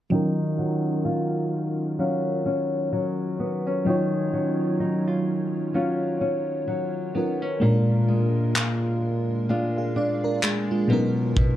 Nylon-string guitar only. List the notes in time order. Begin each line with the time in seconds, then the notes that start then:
0.11 D#3
0.59 F#3
1.05 F4
1.99 F#3 C#4 F4
2.46 C#4
2.93 F#3
3.40 B3
3.67 C#4
3.86 D#3
4.33 F#3
4.80 D#4
5.07 F4
5.74 F#3 C#4 F4
6.21 C#4
6.68 F#3
7.15 B3
7.42 C#4
7.61 A#2
8.08 G#3
8.55 F4
9.49 G#3 D4 F4
9.96 D4
10.43 G#3
10.90 B2
11.36 B2